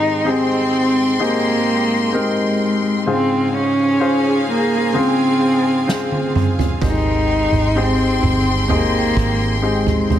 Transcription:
Already playing: G#2 D#3 G#3 C4 D#4 G4 G#4 G5 C6
0.25 C4 D#4 G4 G#4
1.19 A#3 C4 D#4 G4 G#4
2.13 C4 D#4 G4 A#4
2.17 G#3
3.06 G#2 C#3 F4 G#4 C5 F5 G#5
3.11 C4
3.57 C#4
4.00 C#4 F4 G#4 C5
4.51 A#3
4.93 C#3 C4 F4 G#4
4.99 C4
5.88 C#3 C4 F4 G#4, snare
6.12 high tom
6.35 mid tom
6.59 floor tom
6.81 G#1 G#2 D#3 G#3 C4 D#4 G4 G#4 G5 C6, kick, floor tom
6.87 D#4
7.52 G#1, floor tom
7.75 C4 D#4 G4 G#4
8.23 G1, floor tom
8.68 A#3 C4 D#4 G4 G#4, floor tom
9.17 G#1, kick
9.62 G#3 C4 D#4 G4 G#4
9.87 floor tom
10.10 floor tom

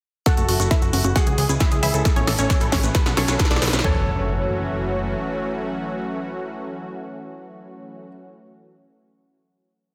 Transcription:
0.26 C#3 E3 F#3 A3 E4 F#4 A4 F#5, kick, snare, closed hi-hat, riser, maracas
0.37 F#1 A3 F#4, closed hi-hat, maracas
0.48 F#1 E3 F#4, open hi-hat
0.60 F#1 C#4 F#4, closed hi-hat, maracas
0.71 E3 E4 E5, kick, snare, closed hi-hat, maracas
0.82 F#1 E4 F#4, closed hi-hat, maracas
0.93 F#1 E3 F#4, open hi-hat, high conga
1.04 F#1 F#4, closed hi-hat, high conga, maracas
1.16 E3 G#3 E4 F#4 G#4 F#5, kick, snare, closed hi-hat, maracas
1.26 C#2 C#4 G#4, closed hi-hat, maracas
1.38 C#2 E3 G#4, open hi-hat
1.49 C#2 E4 G#4, closed hi-hat, high conga, maracas
1.60 E3 E4 E5, kick, snare, closed hi-hat, maracas
1.71 C#2 G#3 G#4, closed hi-hat, maracas
1.83 C#2 E3 E4 G#4 E5, open hi-hat
1.94 C#2 C4 A4, closed hi-hat, maracas
2.05 C#3 E3 A3 B3 E4 A4, kick, snare, closed hi-hat, maracas
2.16 A1 B3 C#4 C#5, closed hi-hat, maracas
2.27 A1 E3 A4, snare, open hi-hat
2.38 A1 C#4 C#5, closed hi-hat, maracas
2.50 E3 A4, kick, snare, closed hi-hat, maracas
2.61 A1 E4 A4, closed hi-hat, maracas
2.72 A1 E3 C#4 C#5, kick, snare, open hi-hat, high conga
2.83 A1 A3 B4, closed hi-hat, high conga, maracas
2.95 D3 F#3 F#4 B4, kick, snare, closed hi-hat, maracas
3.06 B1 B3 B4, snare, closed hi-hat, maracas
3.17 B1 F#3 C#4 A4 C#5, snare, open hi-hat
3.28 B1 D4 B4, snare, closed hi-hat, maracas
3.39 F#3 B4, kick, snare, closed hi-hat, maracas
3.45 snare
3.51 B1 D4 F#4 D5, snare, closed hi-hat, maracas
3.56 snare
3.62 B1 F#3 B4, snare, open hi-hat
3.68 snare
3.73 B1 A3 B4, snare, closed hi-hat, high conga, maracas
3.79 snare
3.84 F#1 E3 F#3 A3 C#4 F#4 A4 C#5, kick, floor tom, impact

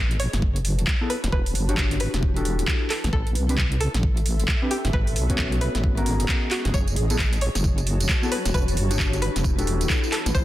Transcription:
Already playing: A1 F#4 B4 C#5 D#5 A5
0.11 closed hi-hat
0.20 C#5, open hi-hat
0.33 F#1, snare, closed hi-hat
0.42 kick
0.56 closed hi-hat
0.65 open hi-hat
0.79 E1, closed hi-hat
0.87 kick, clap
1.01 B3 E4 G#4 A4
1.10 B4, open hi-hat
1.24 E1, snare, closed hi-hat
1.32 E1 E4 B4, kick
1.46 open hi-hat
1.53 G1 B4, open hi-hat
1.69 D4 F#4 G4 C#5, closed hi-hat
1.78 kick, clap
1.91 closed hi-hat
2.00 B4, open hi-hat
2.14 E1, snare, closed hi-hat
2.23 kick
2.36 D4 F#4 G4 A4, closed hi-hat
2.45 open hi-hat
2.59 D1, closed hi-hat
2.68 kick, clap
2.90 A4, clap, open hi-hat
3.04 A1, snare, closed hi-hat
3.13 A1 A4 E5, kick
3.27 closed hi-hat
3.35 C2, open hi-hat
3.43 C6
3.49 C4 D4 G4 B4, closed hi-hat
3.58 kick, clap
3.72 closed hi-hat
3.81 A4, open hi-hat
3.94 A1, snare, closed hi-hat
4.03 kick
4.17 closed hi-hat
4.26 open hi-hat
4.40 G1, closed hi-hat
4.48 kick, clap
4.62 C4 D4 G4 B4
4.71 G4, open hi-hat
4.85 G1, snare, closed hi-hat
4.93 G#1 G#4 B4, kick
5.07 open hi-hat
5.16 B1, open hi-hat
5.26 C#4 D#5
5.30 B3 F#4 C#5, kick, closed hi-hat
5.38 kick, clap
5.52 closed hi-hat
5.61 B4, open hi-hat
5.75 G#1, snare, closed hi-hat
5.84 kick
5.97 B3 C#4 F#4 A#4, closed hi-hat
6.06 open hi-hat
6.20 F#1, closed hi-hat
6.29 kick, clap
6.51 F#4, clap, open hi-hat
6.65 F#1, snare, closed hi-hat
6.74 F#1 F#4 C#5, kick, tambourine
6.88 closed hi-hat, tambourine
6.93 A1 C#5 A5, open hi-hat
7.10 B3 E4 G#4 A4, closed hi-hat, tambourine
7.19 kick, clap, tambourine
7.33 closed hi-hat, tambourine
7.41 C#5, open hi-hat
7.55 F#1, snare, closed hi-hat, tambourine
7.64 kick, tambourine
7.78 closed hi-hat, tambourine
7.87 open hi-hat
8.00 E1, closed hi-hat, tambourine
8.09 kick, clap, tambourine
8.22 B3 E4 G#4 A4, tambourine
8.32 B4, open hi-hat
8.45 E1, snare, closed hi-hat, tambourine
8.54 E1 E4 B4, kick, tambourine
8.66 B4, open hi-hat, tambourine
8.77 G1, open hi-hat
8.90 D4 F#4 G4 C#5, closed hi-hat, tambourine
8.99 kick, clap
9.13 closed hi-hat, tambourine
9.22 B4, open hi-hat
9.36 E1, snare, closed hi-hat, tambourine
9.44 kick, tambourine
9.58 D4 F#4 G4 A4, closed hi-hat, tambourine
9.67 open hi-hat
9.81 D1, closed hi-hat, tambourine
9.90 kick, clap, tambourine
10.04 tambourine
10.12 A4, clap, open hi-hat
10.26 A1, snare, closed hi-hat, tambourine
10.35 A1 C5, kick, tambourine

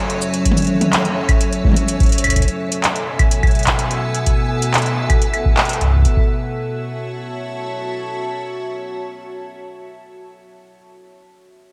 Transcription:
Already playing: F#3 C#4 A4 C#5 E5
0.10 closed hi-hat
0.22 cabasa
0.34 closed hi-hat
0.45 kick, closed hi-hat
0.51 high tom
0.57 closed hi-hat, cabasa
0.60 closed hi-hat
0.62 closed hi-hat
0.64 closed hi-hat
0.67 closed hi-hat
0.81 closed hi-hat, high tom
0.93 clap, closed hi-hat
1.05 closed hi-hat
1.29 kick, closed hi-hat, claves
1.41 closed hi-hat
1.53 closed hi-hat
1.65 kick, high tom
1.67 high tom
1.69 high tom
1.72 high tom
1.74 closed hi-hat, high tom
1.88 closed hi-hat, cabasa
2.00 kick, closed hi-hat
2.03 closed hi-hat
2.06 closed hi-hat
2.09 closed hi-hat
2.12 closed hi-hat
2.15 closed hi-hat
2.18 closed hi-hat
2.21 closed hi-hat
2.24 kick, closed hi-hat, claves
2.27 kick, closed hi-hat, claves
2.30 kick, claves
2.33 B2 B3 A4 E5 G#5, kick, closed hi-hat, claves
2.39 kick, closed hi-hat, claves
2.42 kick, claves
2.45 closed hi-hat, claves
2.72 closed hi-hat
2.84 clap, closed hi-hat
2.96 closed hi-hat
3.19 kick, closed hi-hat, claves
3.31 closed hi-hat
3.43 kick, closed hi-hat, claves
3.47 closed hi-hat
3.51 closed hi-hat
3.55 closed hi-hat
3.59 closed hi-hat
3.63 clap, closed hi-hat
3.67 kick, closed hi-hat
3.79 closed hi-hat
3.91 closed hi-hat
4.15 closed hi-hat
4.26 kick, closed hi-hat
4.62 closed hi-hat
4.74 clap, closed hi-hat
4.78 closed hi-hat
4.82 closed hi-hat
4.86 closed hi-hat
5.10 kick, closed hi-hat, claves
5.22 closed hi-hat
5.34 closed hi-hat, claves
5.46 kick
5.57 clap, closed hi-hat
5.65 closed hi-hat
5.69 closed hi-hat
5.73 closed hi-hat
5.81 kick, closed hi-hat
5.84 kick
5.87 kick
5.90 kick
5.93 kick
5.96 kick
5.99 kick
6.02 kick, closed hi-hat
6.05 kick
6.17 F#4 C#5 E5 A5, kick

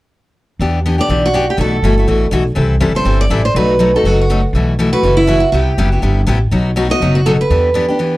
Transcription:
0.59 E2 E3 B3 D4 G4
0.86 E3 B3 D4 G4
0.98 B3 D4 G4 D5
1.08 B1 E3 B3 D4 G4
1.26 F#4
1.34 E3 B3 D4 G4
1.50 G4
1.57 B1 B2 E3 A3 E4 F#4 A4
1.82 G1 B2 E3 A3 E4 F#4
1.98 A3 E4 F#4
2.08 A1 B2 E3 A3 E4 F#4
2.31 B1 B2 E3 A3 E4 F#4
2.55 C2 C3 E3 G3 C4 E4 A4
2.80 F#1 C3 E3 G3 C4 E4 A4
2.95 G3 C4 E4 A4 C5
3.05 G1 C3 E3 G3 C4 E4 A4
3.21 D5
3.30 A1 C3 E3 G3 C4 E4 A4
3.45 C5
3.55 B1 B2 F#3 A3 D#4 F#4 B4
3.79 B2 F#3 A3 D#4 F#4
3.95 A3 D#4 F#4 A4
4.04 F#1 B2 F#3 A3 D#4 F#4
4.21 F#4
4.30 B2 F#3 A3 D#4 F#4
4.53 B1 B2 E3 A3 E4 F#4
4.79 B2 E3 A3 E4 F#4
4.92 A3 E4 F#4 B4
5.03 F#1 B2 E3 A3 E4 F#4
5.17 E4
5.27 B2 E3 A3 E4 F#4
5.40 F#4
5.52 C2 C3 G3 B3 E4 G4
5.78 F#1 C3 G3 B3 E4 G4
5.86 F#4
5.92 B3 E4 G4
6.02 G1 C3 G3 B3 E4 G4
6.27 A1 C3 G3 B3 E4 G4
6.51 B1 B2 F#3 B3 D#4 F#4
6.76 B2 F#3 B3 D#4 F#4
6.89 B3 D#4 F#4 D#5
7.00 F#1 B2 F#3 B3 D#4 F#4
7.15 F#4
7.26 B2 F#3 B3 D#4 F#4 A4
7.41 B4
7.50 E2 E3 B3 D4 G4
7.74 E3 B3 D4 G4
7.88 B3 D4 G4
7.99 E3 B3 D4 G4

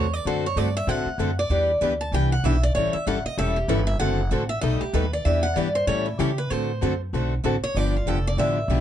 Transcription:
Already playing: E2 C#5
0.14 D5
0.25 F#2 D3 A3 C4 F#4 A4 C5
0.46 C#5
0.56 G2 D3 A3 C4 F#4 A4 D5
0.77 E5
0.87 A2 D3 A3 C4 F#4 A4 F#5
1.06 muted upright bass stroke
1.18 F#2 D3 A3 C4 F#4 A4
1.39 D5
1.50 E2 E3 G3 B3 D4 E4 G4 B4
1.81 D2 E3 G3 B3 D4 E4 G4 B4
2.01 A5
2.12 C2 E3 G3 B3 D4 E4 G4 B4 G5
2.32 F#5
2.44 B1 E3 G3 B3 D4 E4 G4 B4 E5
2.63 D5
2.75 A1 E3 G3 C#4 E4 A4 C#5
2.93 E5, muted upright bass stroke
3.07 G1 E3 G3 C#4 E4 A4 F#5
3.24 D#5, muted upright bass stroke
3.37 E1 E3 G3 C#4 E4 A4 E5
3.56 G4
3.68 G1 E3 G3 C#4 E4 A4 B4
3.87 E5
3.99 F#1 D3 A3 C4 F#4 A4 F#5
4.31 A1 D3 A3 C4 F#4 A4
4.49 E5
4.61 B1 B2 G3 A3 D#4 A4 B4 D#5
4.81 G4, muted upright bass stroke
4.93 D#2 B2 G3 A3 D#4 A4 B4
5.13 D5
5.25 E2 E3 G3 B3 D4 E4 G4 B4 E5
5.43 F#5
5.56 G2 E3 G3 B3 D4 E4 G4 B4 D5
5.75 C5
5.87 A2 E3 G3 C#4 E4 A4 C#5
6.06 E4
6.19 C#3 E3 G3 C#4 E4 G4 A4
6.38 B4
6.50 A2 D3 A3 C4 F#4 A4 C5
6.82 F#2 D3 A3 C4 F#4 A4
7.13 B1 D3 A3 C4 F#4 A4
7.44 A1 D3 A3 C4 F#4 A4
7.63 C#5, muted upright bass stroke
7.75 G1 D3 F3 B3 D4 G4 D5
7.96 F4
8.06 F1 D3 F3 B3 D4 G4 A4
8.27 D5
8.37 A1 D3 F3 B3 D4 G4 E5
8.68 B1 D3 F3 B3 D4 G4

